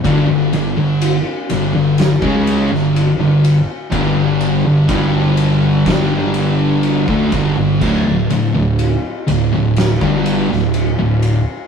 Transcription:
<<
  \new Staff \with { instrumentName = "Distorted electric guitar" } { \clef bass \time 4/4 \key g \lydian \tempo 4 = 62 <g, d>16 <g, d>16 <g, d>16 <g, d>8 r16 <g, d>16 <g, d>8 <cis gis cis'>8 <g, d>8 <g, d>8 r16 | <g, d g>8. <g, d>16 <g, d g>4 <g, d g>4~ <g, d g>16 <d a>16 <g, d>16 <g, d>16 | <d, a,>16 <d, a,>16 <d, a,>16 <d, a,>8 r16 <d, a,>16 <d, a,>8 <g, d g>8 <d, a,>8 <d, a,>8 r16 | }
  \new Staff \with { instrumentName = "Distorted electric guitar" } { \clef bass \time 4/4 \key g \lydian <g, d>16 <g, d>16 <g, d>16 <g, d>8 r16 <g, d>16 <g, d>8 <cis gis cis'>8 <g, d>8 <g, d>8 r16 | <g, d g>8. <g, d>16 <g, d g>4 <g, d g>4~ <g, d g>16 <d a>16 <g, d>16 <g, d>16 | <d, a,>16 <d, a,>16 <d, a,>16 <d, a,>8 r16 <d, a,>16 <d, a,>8 <g, d g>8 <d, a,>8 <d, a,>8 r16 | }
  \new Staff \with { instrumentName = "Overdriven electric guitar" } { \clef bass \time 4/4 \key g \lydian <g, d>16 <g, d>16 <g, d>16 <g, d>8 r16 <g, d>16 <g, d>8 <cis gis cis'>8 <g, d>8 <g, d>8 r16 | <g, d g>8. <g, d>16 <g, d g>4 <g, d g>4~ <g, d g>16 <d a>16 <g, d>16 <g, d>16 | <d, a,>16 <d, a,>16 <d, a,>16 <d, a,>8 r16 <d, a,>16 <d, a,>8 <g, d g>8 <d, a,>8 <d, a,>8 r16 | }
  \new Staff \with { instrumentName = "Picked electric bass" } { \clef bass \time 4/4 \key g \lydian g,,16 g,,16 g,,16 g,,8 r16 g,,16 g,,8 cis,8 g,,8 g,,8 r16 | g,,8. g,,16 g,,4 g,,4~ g,,16 d,16 g,,16 g,,16 | d,,16 d,,16 d,,16 d,,8 r16 d,,16 d,,8 g,,8 d,,8 d,,8 r16 | }
  \new DrumStaff \with { instrumentName = "Drums" } \drummode { \time 4/4 <bd cymr>8 cymr8 cymr8 cymr8 <cymr sn>16 bd16 cymr16 sn16 cymr8 cymr8 | <bd cymr>8 cymr8 <bd cymr>8 cymr8 <bd cymr sn>8 cymr8 cymr16 bd16 <bd cymr>8 | <cymc bd>8 cymr8 cymr8 cymr8 <cymr sn>16 bd16 cymr16 sn16 cymr8 cymr8 | }
>>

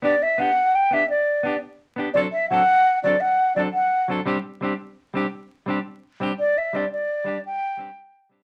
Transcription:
<<
  \new Staff \with { instrumentName = "Flute" } { \time 12/8 \key g \major \tempo 4. = 114 d''8 e''8 fis''4 g''8 e''8 d''4. r4. | d''8 e''8 fis''4. d''8 fis''4 d''8 fis''4 r8 | r1. | d''8 e''8 d''8 d''4. g''2~ g''8 r8 | }
  \new Staff \with { instrumentName = "Clean electric guitar" } { \time 12/8 \key g \major <b d' g'>8 r8 <b d' g'>8 r4 <b d' g'>8 r4 <b d' g'>8 r4 <b d' g'>8 | <fis c' d' a'>8 r8 <fis c' d' a'>8 r4 <fis c' d' a'>8 r4 <fis c' d' a'>8 r4 <fis c' d' a'>8 | <g c' d' g'>8 r8 <g c' d' g'>8 r4 <g c' d' g'>8 r4 <g c' d' g'>8 r4 <g c' d' g'>8 | r4 <g c' d' g'>8 r4 <g d' g'>8 r4 <g c' d' g'>8 r4 <g c' d' g'>8 | }
>>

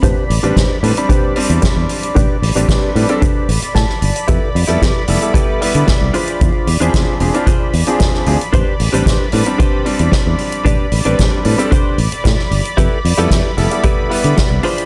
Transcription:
<<
  \new Staff \with { instrumentName = "Analog synth pad" } { \time 4/4 \key a \minor \tempo 4 = 113 <d'' b''>1~ | <d'' b''>1~ | <d'' b''>1~ | <d'' b''>1 |
<d'' b''>1~ | <d'' b''>1~ | <d'' b''>1 | }
  \new Staff \with { instrumentName = "Clean electric guitar" } { \time 4/4 \key a \minor <d' g' b' c''>8 r16 <d' g' b' c''>8. r8 <d' g' b' c''>8 r4. | <d' g' b' d''>8 r16 <d' g' b' d''>8. r8 <d' g' b' c''>8 r8 a''4 | <e' g' a' b'>8 r16 <e' g' a' b'>8. r8 <e' g' a' b'>8 r4 <d' f' gis' c''>8~ | <d' f' gis' c''>8 r16 <d' f' gis' c''>8. r8 <d' f' gis' c''>8 r4. |
<d' g' b' c''>8 r16 <d' g' b' c''>8. r8 <d' g' b' c''>8 r4. | <d' g' b' d''>8 r16 <d' g' b' d''>8. r8 <d' g' b' c''>8 r4. | <e' g' a' b'>8 r16 <e' g' a' b'>8. r8 <e' g' a' b'>8 r4 <d' f' gis' c''>8 | }
  \new Staff \with { instrumentName = "Grand piano" } { \time 4/4 \key a \minor r8. <g c' d' b'>16 r8 <g c' d' b'>16 <g c' d' b''>8. <g c' d'>4.~ | <g c' d'>8. <g c' d' b'>8. <g c' d' b'>16 <g c' d' a'>16 r2 | r8. <g b e' a'>16 r8 <g b e' a'>16 <g b e' a'>8. <g b e' b'>4 r8 | r8. <f c' d' gis'>8. <f c' d' gis'>16 <f c' d' f'>16 r8. <f c' d' gis'>8. <f c' d' gis'>16 r16 |
r8. <g c' d' b'>16 r8 <g c' d' b'>16 <g c' d' b''>8. <g c' d'>4.~ | <g c' d'>8. <g c' d' b'>8. <g c' d' b'>16 <g c' d' a'>16 r2 | r8. <g b e' a'>16 r8 <g b e' a'>16 <g b e' a'>8. <g b e' b'>4 r8 | }
  \new Staff \with { instrumentName = "Fingered electric bass" } { \clef bass \time 4/4 \key a \minor a,,16 r16 a,,16 a,,16 a,,16 r16 a,16 r4 e,16 r16 e,16 r8 | a,,16 r16 a,,16 a,,16 r8 a,16 r8. a,,16 r16 a,16 r16 g,,16 r16 | f,16 r16 f,16 f,16 f,16 r16 f,,16 r4 d16 r16 c,16 r8 | e,16 r16 e,16 e,16 e,16 r16 e,,16 r8. e,16 r8. d,16 r16 |
a,,16 r16 a,,16 a,,16 a,,16 r16 a,16 r4 e,16 r16 e,16 r8 | a,,16 r16 a,,16 a,,16 a,,16 r16 a,16 r8. a,,16 r16 a,16 r16 g,,16 r16 | f,16 r16 f,16 f,16 f,16 r16 f,,16 r4 d16 r16 c,16 r8 | }
  \new DrumStaff \with { instrumentName = "Drums" } \drummode { \time 4/4 <hh bd>8 hho16 hh16 <hh bd sn>8 hho16 hh16 <hh bd>8 hho16 hh16 <hh bd sn>8 hho16 hh16 | <hh bd>8 hho16 hh16 <hh bd sn>8 hho16 hh16 <hh bd>8 hho16 hh16 <hh bd sn>16 sn16 hho16 hh16 | <hh bd>8 hho16 hh16 <hh bd sn>8 hho16 hh16 <hh bd>8 hho16 hh16 <hh bd sn>8 hho16 hh16 | <hh bd>8 hho16 hh16 <hh bd sn>8 hho16 hh16 <hh bd>8 hho16 hh16 <hh bd sn>16 sn16 hho16 hh16 |
<hh bd>8 hho16 hh16 <hh bd sn>8 hho16 hh16 <hh bd>8 hho16 hh16 <hh bd sn>8 hho16 hh16 | <hh bd>8 hho16 hh16 <hh bd sn>8 hho16 hh16 <hh bd>8 hho16 hh16 <hh bd sn>16 sn16 hho16 hh16 | <hh bd>8 hho16 hh16 <hh bd sn>8 hho16 hh16 <hh bd>8 hho16 hh16 <hh bd sn>8 hho16 hh16 | }
>>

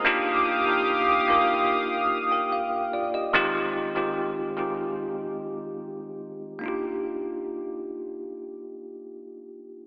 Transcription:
<<
  \new Staff \with { instrumentName = "Analog synth pad" } { \time 4/4 \key f \dorian \tempo 4 = 73 <g' f'' d''' ees'''>1 | r1 | r1 | }
  \new Staff \with { instrumentName = "Tine electric piano" } { \time 4/4 \key f \dorian << { bes'16 r2 r8 <bes' g''>16 f''8 <f' d''>16 <g' ees''>16~ | <g' ees''>16 r2. r8. | r1 | } \\ { <bes d' ees' f' g'>8 r16 <bes d' ees' f' g'>8 r16 <bes d' ees' f' bes'>8. r4. r16 | <ees aes c' ees' f' g'>8 r16 <ees aes c' ees' f' g'>8 r16 <ees aes c' ees' f' g'>4. r4 | <bes d' ees' f' g'>1 | } >> }
>>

